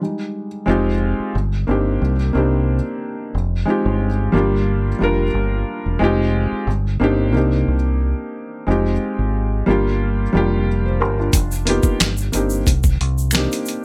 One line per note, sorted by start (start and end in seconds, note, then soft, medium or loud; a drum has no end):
0.01 0.46 G3 soft
0.01 0.46 G#3 soft
0.01 0.47 D#4 soft
0.66 1.13 F1 medium
0.66 0.90 G#3 medium
0.66 0.91 C4 medium
0.66 0.91 D#4 medium
0.66 0.92 F4 medium
0.70 0.92 G4 medium
1.20 muted fingered electric bass stroke soft
1.35 1.64 G1 loud
1.67 1.97 G1 medium
1.67 2.15 A#3 medium
1.67 2.15 C4 medium
1.67 2.15 D4 medium
1.67 2.16 D#4 medium
1.71 2.17 G4 medium
2.02 2.30 C2 loud
2.33 2.80 C2 medium
2.33 2.74 A#3 medium
2.33 2.74 C4 medium
2.33 2.75 D4 medium
2.33 2.75 D#4 medium
2.37 2.76 G4 medium
3.35 3.63 F1 medium
3.65 4.07 G#3 medium
3.65 4.07 C4 medium
3.65 4.08 D#4 medium
3.65 4.08 F4 medium
3.70 4.09 G4 medium
3.86 4.28 G1 medium
4.32 4.93 G1 loud
4.32 4.87 G3 medium
4.32 4.88 A#3 medium
4.32 4.88 D4 medium
4.32 4.89 F4 medium
4.37 4.90 G4 medium
4.99 5.30 F1 medium
4.99 5.24 G3 medium
4.99 5.24 A#3 medium
4.99 5.25 D4 medium
4.99 5.25 F4 medium
5.03 5.26 A#4 medium
5.34 5.63 G1 medium
5.86 5.99 E1 medium
5.99 6.46 F1 loud
5.99 6.66 G#3 medium
5.99 6.67 C4 medium
5.99 6.67 D#4 medium
5.99 6.68 F4 medium
6.04 6.68 G4 loud
6.52 muted fingered electric bass stroke soft
6.67 6.96 G1 loud
7.00 7.35 G1 medium
7.00 7.31 A#3 medium
7.00 7.32 C4 medium
7.00 7.33 D4 medium
7.00 7.35 D#4 medium
7.04 7.36 G4 medium
7.33 7.63 C2 medium
7.33 7.73 A#3 medium
7.33 7.74 C4 medium
7.33 7.75 D4 medium
7.33 7.75 D#4 medium
7.37 7.76 G4 medium
7.68 8.13 C2 medium
8.67 8.97 F1 medium
8.67 8.91 G#3 medium
8.67 8.91 C4 medium
8.67 8.92 D#4 medium
8.67 8.92 F4 medium
8.71 8.93 G4 medium
9.19 9.61 G#1 medium
9.66 10.26 G1 medium
9.66 10.21 G3 medium
9.66 10.21 A#3 medium
9.66 10.22 D4 medium
9.66 10.23 F4 medium
9.70 10.23 G4 medium
10.33 11.01 F1 loud
10.33 11.27 G3 medium
10.33 11.27 A#3 medium
10.33 10.67 D4 medium
10.33 10.68 F4 medium
10.37 10.68 G4 medium
10.86 11.00 C5 medium
11.00 11.30 G1 medium
11.00 11.18 G4 medium
11.00 11.17 A#4 medium
11.19 11.51 D4 medium
11.19 11.50 F4 medium
11.33 11.79 F1 medium
11.33 kick loud
11.33 closed hi-hat medium
11.33 shaker medium
11.51 shaker soft
11.65 12.07 A#3 medium
11.65 12.07 B3 medium
11.65 12.08 D#4 medium
11.65 12.08 F4 medium
11.65 closed hi-hat medium
11.70 12.09 G4 medium
11.83 kick medium
11.83 shaker medium
12.00 12.30 G1 loud
12.00 finger snap medium
12.00 snare loud
12.00 closed hi-hat medium
12.00 shaker medium
12.17 shaker soft
12.32 12.63 G1 medium
12.32 12.57 A#3 medium
12.32 12.57 C4 medium
12.32 12.58 D4 medium
12.32 12.58 D#4 medium
12.32 closed hi-hat medium
12.32 shaker soft
12.36 12.59 G4 medium
12.50 shaker soft
12.67 12.96 C2 medium
12.67 kick medium
12.67 closed hi-hat medium
12.67 shaker medium
12.83 kick loud
12.83 shaker soft
13.01 13.46 C2 medium
13.01 closed hi-hat medium
13.18 shaker soft
13.31 13.57 A#3 medium
13.31 13.58 C4 medium
13.31 13.58 D4 medium
13.31 finger snap medium
13.31 snare loud
13.31 closed hi-hat medium
13.31 shaker medium
13.35 13.59 D#4 medium
13.35 13.59 G4 medium
13.35 finger snap loud
13.52 closed hi-hat soft
13.52 shaker soft
13.66 closed hi-hat medium
13.66 shaker soft